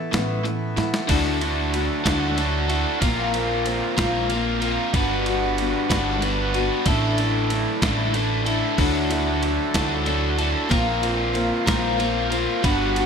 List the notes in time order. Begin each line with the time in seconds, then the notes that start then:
Already playing: E3 A3 B3 E4 A4
0.12 A1 A2 E3 A3 B3 E4, snare, closed hi-hat
0.44 A2 E3 A3 B3 E4, closed hi-hat
0.77 A2 E3 A3 B3 E4, snare, closed hi-hat
0.94 snare
1.08 D2 D3 F#3 A3 D4 E4 F#4 A4, kick, crash, ride
1.40 A3 D4 E4, ride
1.73 F#3 A3 D4 E4, ride
2.04 D2 D3 F#3 A3 D4 E4 F#4 A4, kick, snare, ride
2.36 F#3 A3 D4 E4 F#4 A4, ride
2.68 A3 D4 E4 F#4 A4, ride
3.01 A#1 A#2 F3 A#3 C4 F4 A#4, kick, ride
3.32 A#3 C4 F4, ride
3.65 F3 A#3 C4 F4, ride
3.97 A#1 A#2 F3 A#3 C4 F4 A#4, kick, snare, ride
4.30 F3 A#3 C4 F4 A#4, ride
4.61 A#3 C4 F4 A#4, ride
4.93 G1 G3 B3 D4 F#4 B4, kick, ride
5.26 B3 D4 F#4, ride
5.57 G3 B3 D4 F#4, ride
5.89 G1 G3 B3 D4 F#4 B4, kick, snare, ride
6.22 G3 B3 D4 F#4 B4, ride
6.53 D4 F#4 B4, ride
6.57 B3
6.86 A1 A2 D3 E3 A3 D4 E4 A4, kick, ride
7.18 A3 D4 E4, ride
7.50 D3 A3 D4 E4, ride
7.82 A1 A2 D3 A3 D4 E4 A4, kick, snare, ride
8.13 D3 A3 D4 E4 A4, ride
8.45 A3 D4 E4 A4, ride
8.78 D2 D3 F#3 A3 D4 E4 F#4 A4, kick, crash
9.09 A3 D4 E4, ride
9.42 F#3 A3 D4 E4, ride
9.74 D2 D3 F#3 A3 D4 E4 F#4 A4, kick, snare, ride
10.06 D3 F#3 A3 D4 E4 F#4 A4, ride
10.37 A3 D4 E4 F#4 A4, ride
10.69 A#1 A#2 F3 A#3 C4 F4 A#4, kick, ride
11.01 A#3 C4 F4, ride
11.33 F3 A#3 C4 F4, ride
11.66 A#1 A#2 F3 A#3 C4 F4 A#4, kick, snare, ride
11.97 F3 A#3 C4 F4 A#4, ride
12.30 A#3 C4 F4 A#4, ride
12.63 G1 G3 B3 D4 F#4 B4, kick, ride
12.96 B3 D4 F#4, ride